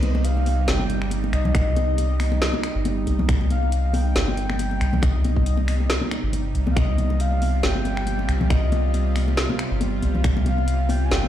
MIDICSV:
0, 0, Header, 1, 5, 480
1, 0, Start_track
1, 0, Key_signature, -3, "minor"
1, 0, Tempo, 434783
1, 1708, Time_signature, 4, 2, 24, 8
1, 12454, End_track
2, 0, Start_track
2, 0, Title_t, "Soft synth lead"
2, 0, Program_c, 0, 80
2, 30, Note_on_c, 0, 75, 87
2, 269, Note_on_c, 0, 77, 100
2, 286, Note_off_c, 0, 75, 0
2, 748, Note_on_c, 0, 79, 115
2, 765, Note_off_c, 0, 77, 0
2, 1228, Note_off_c, 0, 79, 0
2, 1465, Note_on_c, 0, 75, 105
2, 1690, Note_off_c, 0, 75, 0
2, 1706, Note_on_c, 0, 75, 127
2, 3343, Note_off_c, 0, 75, 0
2, 3869, Note_on_c, 0, 77, 110
2, 4348, Note_on_c, 0, 79, 105
2, 4364, Note_off_c, 0, 77, 0
2, 4582, Note_off_c, 0, 79, 0
2, 4589, Note_on_c, 0, 79, 125
2, 5547, Note_on_c, 0, 75, 99
2, 5563, Note_off_c, 0, 79, 0
2, 6508, Note_off_c, 0, 75, 0
2, 7400, Note_on_c, 0, 77, 75
2, 7472, Note_on_c, 0, 75, 100
2, 7489, Note_off_c, 0, 77, 0
2, 7952, Note_on_c, 0, 77, 105
2, 7968, Note_off_c, 0, 75, 0
2, 8431, Note_on_c, 0, 79, 125
2, 8447, Note_off_c, 0, 77, 0
2, 9389, Note_on_c, 0, 75, 100
2, 9405, Note_off_c, 0, 79, 0
2, 10349, Note_off_c, 0, 75, 0
2, 11552, Note_on_c, 0, 77, 110
2, 12031, Note_on_c, 0, 79, 110
2, 12047, Note_off_c, 0, 77, 0
2, 12193, Note_off_c, 0, 79, 0
2, 12200, Note_on_c, 0, 80, 88
2, 12273, Note_on_c, 0, 79, 127
2, 12290, Note_off_c, 0, 80, 0
2, 12454, Note_off_c, 0, 79, 0
2, 12454, End_track
3, 0, Start_track
3, 0, Title_t, "Synth drone"
3, 0, Program_c, 1, 95
3, 0, Note_on_c, 1, 48, 86
3, 0, Note_on_c, 1, 55, 80
3, 0, Note_on_c, 1, 63, 94
3, 7453, Note_off_c, 1, 63, 0
3, 7463, Note_on_c, 1, 65, 91
3, 12454, Note_off_c, 1, 48, 0
3, 12454, Note_off_c, 1, 55, 0
3, 12454, Note_off_c, 1, 65, 0
3, 12454, End_track
4, 0, Start_track
4, 0, Title_t, "Sub bass"
4, 0, Program_c, 2, 38
4, 0, Note_on_c, 2, 36, 99
4, 735, Note_off_c, 2, 36, 0
4, 750, Note_on_c, 2, 31, 80
4, 1455, Note_off_c, 2, 31, 0
4, 1469, Note_on_c, 2, 36, 93
4, 1692, Note_off_c, 2, 36, 0
4, 1707, Note_on_c, 2, 36, 99
4, 2654, Note_off_c, 2, 36, 0
4, 3039, Note_on_c, 2, 31, 105
4, 3373, Note_off_c, 2, 31, 0
4, 3386, Note_on_c, 2, 36, 82
4, 3610, Note_off_c, 2, 36, 0
4, 3627, Note_on_c, 2, 36, 100
4, 4574, Note_off_c, 2, 36, 0
4, 4589, Note_on_c, 2, 31, 78
4, 5295, Note_off_c, 2, 31, 0
4, 5310, Note_on_c, 2, 36, 92
4, 5532, Note_off_c, 2, 36, 0
4, 5550, Note_on_c, 2, 36, 100
4, 6495, Note_off_c, 2, 36, 0
4, 6882, Note_on_c, 2, 31, 98
4, 7215, Note_off_c, 2, 31, 0
4, 7227, Note_on_c, 2, 36, 84
4, 7450, Note_off_c, 2, 36, 0
4, 7468, Note_on_c, 2, 36, 102
4, 8415, Note_off_c, 2, 36, 0
4, 8428, Note_on_c, 2, 31, 79
4, 9134, Note_off_c, 2, 31, 0
4, 9147, Note_on_c, 2, 36, 95
4, 9371, Note_off_c, 2, 36, 0
4, 9387, Note_on_c, 2, 36, 97
4, 10334, Note_off_c, 2, 36, 0
4, 10722, Note_on_c, 2, 31, 105
4, 11055, Note_off_c, 2, 31, 0
4, 11067, Note_on_c, 2, 36, 86
4, 11291, Note_off_c, 2, 36, 0
4, 11307, Note_on_c, 2, 36, 97
4, 12254, Note_off_c, 2, 36, 0
4, 12271, Note_on_c, 2, 31, 82
4, 12454, Note_off_c, 2, 31, 0
4, 12454, End_track
5, 0, Start_track
5, 0, Title_t, "Drums"
5, 29, Note_on_c, 9, 42, 54
5, 31, Note_on_c, 9, 63, 93
5, 140, Note_off_c, 9, 42, 0
5, 141, Note_off_c, 9, 63, 0
5, 164, Note_on_c, 9, 62, 86
5, 271, Note_on_c, 9, 42, 82
5, 274, Note_off_c, 9, 62, 0
5, 381, Note_off_c, 9, 42, 0
5, 407, Note_on_c, 9, 62, 51
5, 511, Note_on_c, 9, 46, 94
5, 515, Note_on_c, 9, 63, 70
5, 518, Note_off_c, 9, 62, 0
5, 621, Note_off_c, 9, 46, 0
5, 625, Note_off_c, 9, 63, 0
5, 749, Note_on_c, 9, 38, 122
5, 749, Note_on_c, 9, 42, 91
5, 749, Note_on_c, 9, 62, 89
5, 860, Note_off_c, 9, 38, 0
5, 860, Note_off_c, 9, 42, 0
5, 860, Note_off_c, 9, 62, 0
5, 878, Note_on_c, 9, 63, 99
5, 988, Note_off_c, 9, 63, 0
5, 988, Note_on_c, 9, 62, 53
5, 990, Note_on_c, 9, 42, 57
5, 1099, Note_off_c, 9, 62, 0
5, 1101, Note_off_c, 9, 42, 0
5, 1122, Note_on_c, 9, 26, 50
5, 1222, Note_on_c, 9, 63, 66
5, 1229, Note_on_c, 9, 42, 79
5, 1233, Note_off_c, 9, 26, 0
5, 1333, Note_off_c, 9, 63, 0
5, 1339, Note_off_c, 9, 42, 0
5, 1368, Note_on_c, 9, 62, 73
5, 1469, Note_on_c, 9, 26, 60
5, 1469, Note_on_c, 9, 42, 56
5, 1478, Note_off_c, 9, 62, 0
5, 1579, Note_off_c, 9, 26, 0
5, 1579, Note_off_c, 9, 42, 0
5, 1602, Note_on_c, 9, 63, 96
5, 1602, Note_on_c, 9, 64, 88
5, 1605, Note_on_c, 9, 62, 56
5, 1707, Note_on_c, 9, 26, 78
5, 1707, Note_on_c, 9, 42, 85
5, 1708, Note_on_c, 9, 36, 125
5, 1712, Note_off_c, 9, 64, 0
5, 1713, Note_off_c, 9, 63, 0
5, 1715, Note_off_c, 9, 62, 0
5, 1818, Note_off_c, 9, 26, 0
5, 1818, Note_off_c, 9, 36, 0
5, 1818, Note_off_c, 9, 42, 0
5, 1948, Note_on_c, 9, 42, 56
5, 1951, Note_on_c, 9, 62, 82
5, 1954, Note_on_c, 9, 63, 89
5, 2059, Note_off_c, 9, 42, 0
5, 2062, Note_off_c, 9, 62, 0
5, 2064, Note_off_c, 9, 63, 0
5, 2187, Note_on_c, 9, 42, 86
5, 2196, Note_on_c, 9, 62, 49
5, 2298, Note_off_c, 9, 42, 0
5, 2306, Note_off_c, 9, 62, 0
5, 2427, Note_on_c, 9, 26, 59
5, 2427, Note_on_c, 9, 46, 97
5, 2428, Note_on_c, 9, 63, 68
5, 2538, Note_off_c, 9, 26, 0
5, 2538, Note_off_c, 9, 46, 0
5, 2539, Note_off_c, 9, 63, 0
5, 2560, Note_on_c, 9, 62, 78
5, 2669, Note_on_c, 9, 38, 127
5, 2669, Note_on_c, 9, 42, 88
5, 2670, Note_off_c, 9, 62, 0
5, 2779, Note_off_c, 9, 38, 0
5, 2779, Note_off_c, 9, 42, 0
5, 2799, Note_on_c, 9, 63, 102
5, 2803, Note_on_c, 9, 62, 53
5, 2909, Note_off_c, 9, 63, 0
5, 2909, Note_on_c, 9, 26, 80
5, 2909, Note_on_c, 9, 42, 55
5, 2913, Note_off_c, 9, 62, 0
5, 3019, Note_off_c, 9, 26, 0
5, 3019, Note_off_c, 9, 42, 0
5, 3148, Note_on_c, 9, 42, 85
5, 3151, Note_on_c, 9, 62, 83
5, 3151, Note_on_c, 9, 63, 74
5, 3258, Note_off_c, 9, 42, 0
5, 3262, Note_off_c, 9, 62, 0
5, 3262, Note_off_c, 9, 63, 0
5, 3389, Note_on_c, 9, 42, 56
5, 3389, Note_on_c, 9, 62, 59
5, 3500, Note_off_c, 9, 42, 0
5, 3500, Note_off_c, 9, 62, 0
5, 3522, Note_on_c, 9, 63, 89
5, 3525, Note_on_c, 9, 64, 90
5, 3629, Note_on_c, 9, 36, 127
5, 3630, Note_on_c, 9, 26, 79
5, 3630, Note_on_c, 9, 42, 88
5, 3632, Note_off_c, 9, 63, 0
5, 3636, Note_off_c, 9, 64, 0
5, 3739, Note_off_c, 9, 36, 0
5, 3740, Note_off_c, 9, 26, 0
5, 3740, Note_off_c, 9, 42, 0
5, 3764, Note_on_c, 9, 62, 81
5, 3869, Note_on_c, 9, 42, 53
5, 3872, Note_on_c, 9, 63, 92
5, 3875, Note_off_c, 9, 62, 0
5, 3980, Note_off_c, 9, 42, 0
5, 3982, Note_off_c, 9, 63, 0
5, 4005, Note_on_c, 9, 62, 49
5, 4109, Note_on_c, 9, 42, 79
5, 4115, Note_off_c, 9, 62, 0
5, 4220, Note_off_c, 9, 42, 0
5, 4345, Note_on_c, 9, 62, 83
5, 4349, Note_on_c, 9, 46, 92
5, 4352, Note_on_c, 9, 63, 74
5, 4455, Note_off_c, 9, 62, 0
5, 4459, Note_off_c, 9, 46, 0
5, 4463, Note_off_c, 9, 63, 0
5, 4588, Note_on_c, 9, 62, 47
5, 4590, Note_on_c, 9, 38, 127
5, 4590, Note_on_c, 9, 42, 84
5, 4698, Note_off_c, 9, 62, 0
5, 4700, Note_off_c, 9, 38, 0
5, 4700, Note_off_c, 9, 42, 0
5, 4726, Note_on_c, 9, 63, 103
5, 4829, Note_on_c, 9, 42, 58
5, 4836, Note_off_c, 9, 63, 0
5, 4939, Note_off_c, 9, 42, 0
5, 4963, Note_on_c, 9, 26, 52
5, 4966, Note_on_c, 9, 62, 83
5, 5070, Note_on_c, 9, 42, 83
5, 5070, Note_on_c, 9, 63, 69
5, 5074, Note_off_c, 9, 26, 0
5, 5076, Note_off_c, 9, 62, 0
5, 5180, Note_off_c, 9, 63, 0
5, 5181, Note_off_c, 9, 42, 0
5, 5202, Note_on_c, 9, 62, 51
5, 5311, Note_on_c, 9, 26, 57
5, 5311, Note_on_c, 9, 42, 57
5, 5313, Note_off_c, 9, 62, 0
5, 5421, Note_off_c, 9, 26, 0
5, 5421, Note_off_c, 9, 42, 0
5, 5442, Note_on_c, 9, 63, 98
5, 5450, Note_on_c, 9, 64, 81
5, 5543, Note_on_c, 9, 62, 71
5, 5549, Note_on_c, 9, 36, 123
5, 5550, Note_on_c, 9, 26, 75
5, 5550, Note_on_c, 9, 42, 79
5, 5552, Note_off_c, 9, 63, 0
5, 5561, Note_off_c, 9, 64, 0
5, 5653, Note_off_c, 9, 62, 0
5, 5659, Note_off_c, 9, 36, 0
5, 5660, Note_off_c, 9, 26, 0
5, 5660, Note_off_c, 9, 42, 0
5, 5789, Note_on_c, 9, 62, 50
5, 5790, Note_on_c, 9, 42, 51
5, 5797, Note_on_c, 9, 63, 102
5, 5900, Note_off_c, 9, 62, 0
5, 5901, Note_off_c, 9, 42, 0
5, 5907, Note_off_c, 9, 63, 0
5, 5922, Note_on_c, 9, 36, 62
5, 6031, Note_on_c, 9, 42, 80
5, 6033, Note_off_c, 9, 36, 0
5, 6141, Note_off_c, 9, 42, 0
5, 6154, Note_on_c, 9, 62, 70
5, 6264, Note_off_c, 9, 62, 0
5, 6271, Note_on_c, 9, 26, 62
5, 6271, Note_on_c, 9, 46, 90
5, 6272, Note_on_c, 9, 63, 63
5, 6381, Note_off_c, 9, 26, 0
5, 6381, Note_off_c, 9, 46, 0
5, 6382, Note_off_c, 9, 63, 0
5, 6406, Note_on_c, 9, 62, 49
5, 6510, Note_on_c, 9, 38, 127
5, 6510, Note_on_c, 9, 42, 81
5, 6517, Note_off_c, 9, 62, 0
5, 6621, Note_off_c, 9, 38, 0
5, 6621, Note_off_c, 9, 42, 0
5, 6639, Note_on_c, 9, 63, 110
5, 6750, Note_off_c, 9, 63, 0
5, 6750, Note_on_c, 9, 26, 80
5, 6750, Note_on_c, 9, 42, 52
5, 6753, Note_on_c, 9, 62, 80
5, 6860, Note_off_c, 9, 26, 0
5, 6860, Note_off_c, 9, 42, 0
5, 6864, Note_off_c, 9, 62, 0
5, 6988, Note_on_c, 9, 63, 75
5, 6990, Note_on_c, 9, 42, 75
5, 6991, Note_on_c, 9, 62, 48
5, 7098, Note_off_c, 9, 63, 0
5, 7100, Note_off_c, 9, 42, 0
5, 7101, Note_off_c, 9, 62, 0
5, 7231, Note_on_c, 9, 42, 53
5, 7341, Note_off_c, 9, 42, 0
5, 7361, Note_on_c, 9, 62, 76
5, 7362, Note_on_c, 9, 64, 77
5, 7373, Note_on_c, 9, 63, 99
5, 7464, Note_off_c, 9, 62, 0
5, 7464, Note_on_c, 9, 62, 50
5, 7468, Note_on_c, 9, 36, 121
5, 7470, Note_on_c, 9, 26, 83
5, 7470, Note_on_c, 9, 42, 79
5, 7472, Note_off_c, 9, 64, 0
5, 7484, Note_off_c, 9, 63, 0
5, 7575, Note_off_c, 9, 62, 0
5, 7579, Note_off_c, 9, 36, 0
5, 7581, Note_off_c, 9, 26, 0
5, 7581, Note_off_c, 9, 42, 0
5, 7705, Note_on_c, 9, 63, 89
5, 7710, Note_on_c, 9, 42, 50
5, 7815, Note_off_c, 9, 63, 0
5, 7820, Note_off_c, 9, 42, 0
5, 7840, Note_on_c, 9, 62, 72
5, 7948, Note_on_c, 9, 42, 79
5, 7951, Note_off_c, 9, 62, 0
5, 8058, Note_off_c, 9, 42, 0
5, 8081, Note_on_c, 9, 62, 42
5, 8189, Note_on_c, 9, 46, 91
5, 8191, Note_off_c, 9, 62, 0
5, 8192, Note_on_c, 9, 63, 73
5, 8300, Note_off_c, 9, 46, 0
5, 8303, Note_off_c, 9, 63, 0
5, 8427, Note_on_c, 9, 38, 127
5, 8427, Note_on_c, 9, 42, 82
5, 8431, Note_on_c, 9, 62, 80
5, 8538, Note_off_c, 9, 38, 0
5, 8538, Note_off_c, 9, 42, 0
5, 8542, Note_off_c, 9, 62, 0
5, 8561, Note_on_c, 9, 63, 106
5, 8665, Note_on_c, 9, 62, 52
5, 8668, Note_on_c, 9, 42, 51
5, 8671, Note_off_c, 9, 63, 0
5, 8776, Note_off_c, 9, 62, 0
5, 8778, Note_off_c, 9, 42, 0
5, 8802, Note_on_c, 9, 26, 55
5, 8906, Note_on_c, 9, 63, 71
5, 8908, Note_on_c, 9, 42, 77
5, 8912, Note_off_c, 9, 26, 0
5, 9016, Note_off_c, 9, 63, 0
5, 9018, Note_off_c, 9, 42, 0
5, 9042, Note_on_c, 9, 62, 68
5, 9149, Note_on_c, 9, 26, 63
5, 9149, Note_on_c, 9, 42, 51
5, 9152, Note_off_c, 9, 62, 0
5, 9259, Note_off_c, 9, 26, 0
5, 9259, Note_off_c, 9, 42, 0
5, 9282, Note_on_c, 9, 62, 54
5, 9284, Note_on_c, 9, 63, 95
5, 9284, Note_on_c, 9, 64, 79
5, 9387, Note_on_c, 9, 36, 122
5, 9388, Note_on_c, 9, 26, 85
5, 9388, Note_on_c, 9, 42, 82
5, 9392, Note_off_c, 9, 62, 0
5, 9394, Note_off_c, 9, 63, 0
5, 9394, Note_off_c, 9, 64, 0
5, 9498, Note_off_c, 9, 36, 0
5, 9499, Note_off_c, 9, 26, 0
5, 9499, Note_off_c, 9, 42, 0
5, 9628, Note_on_c, 9, 42, 49
5, 9629, Note_on_c, 9, 63, 85
5, 9631, Note_on_c, 9, 62, 86
5, 9738, Note_off_c, 9, 42, 0
5, 9739, Note_off_c, 9, 63, 0
5, 9741, Note_off_c, 9, 62, 0
5, 9869, Note_on_c, 9, 62, 50
5, 9870, Note_on_c, 9, 42, 72
5, 9979, Note_off_c, 9, 62, 0
5, 9980, Note_off_c, 9, 42, 0
5, 10109, Note_on_c, 9, 26, 65
5, 10109, Note_on_c, 9, 46, 91
5, 10118, Note_on_c, 9, 63, 57
5, 10219, Note_off_c, 9, 26, 0
5, 10219, Note_off_c, 9, 46, 0
5, 10229, Note_off_c, 9, 63, 0
5, 10245, Note_on_c, 9, 62, 72
5, 10349, Note_on_c, 9, 38, 120
5, 10349, Note_on_c, 9, 42, 82
5, 10356, Note_off_c, 9, 62, 0
5, 10459, Note_off_c, 9, 38, 0
5, 10459, Note_off_c, 9, 42, 0
5, 10480, Note_on_c, 9, 62, 54
5, 10490, Note_on_c, 9, 63, 97
5, 10589, Note_on_c, 9, 26, 84
5, 10589, Note_on_c, 9, 42, 50
5, 10591, Note_off_c, 9, 62, 0
5, 10600, Note_off_c, 9, 63, 0
5, 10699, Note_off_c, 9, 26, 0
5, 10699, Note_off_c, 9, 42, 0
5, 10827, Note_on_c, 9, 62, 80
5, 10828, Note_on_c, 9, 42, 78
5, 10832, Note_on_c, 9, 63, 63
5, 10938, Note_off_c, 9, 62, 0
5, 10939, Note_off_c, 9, 42, 0
5, 10943, Note_off_c, 9, 63, 0
5, 11067, Note_on_c, 9, 62, 56
5, 11068, Note_on_c, 9, 42, 51
5, 11177, Note_off_c, 9, 62, 0
5, 11178, Note_off_c, 9, 42, 0
5, 11202, Note_on_c, 9, 64, 72
5, 11208, Note_on_c, 9, 63, 87
5, 11308, Note_on_c, 9, 26, 88
5, 11308, Note_on_c, 9, 36, 114
5, 11308, Note_on_c, 9, 42, 77
5, 11313, Note_off_c, 9, 64, 0
5, 11318, Note_off_c, 9, 63, 0
5, 11418, Note_off_c, 9, 26, 0
5, 11418, Note_off_c, 9, 36, 0
5, 11418, Note_off_c, 9, 42, 0
5, 11444, Note_on_c, 9, 62, 81
5, 11546, Note_on_c, 9, 63, 81
5, 11547, Note_on_c, 9, 42, 53
5, 11555, Note_off_c, 9, 62, 0
5, 11656, Note_off_c, 9, 63, 0
5, 11658, Note_off_c, 9, 42, 0
5, 11683, Note_on_c, 9, 62, 57
5, 11787, Note_on_c, 9, 42, 74
5, 11794, Note_off_c, 9, 62, 0
5, 11898, Note_off_c, 9, 42, 0
5, 12022, Note_on_c, 9, 62, 80
5, 12025, Note_on_c, 9, 63, 68
5, 12029, Note_on_c, 9, 46, 94
5, 12133, Note_off_c, 9, 62, 0
5, 12136, Note_off_c, 9, 63, 0
5, 12139, Note_off_c, 9, 46, 0
5, 12266, Note_on_c, 9, 62, 55
5, 12271, Note_on_c, 9, 38, 123
5, 12271, Note_on_c, 9, 42, 78
5, 12376, Note_off_c, 9, 62, 0
5, 12381, Note_off_c, 9, 38, 0
5, 12381, Note_off_c, 9, 42, 0
5, 12403, Note_on_c, 9, 63, 86
5, 12454, Note_off_c, 9, 63, 0
5, 12454, End_track
0, 0, End_of_file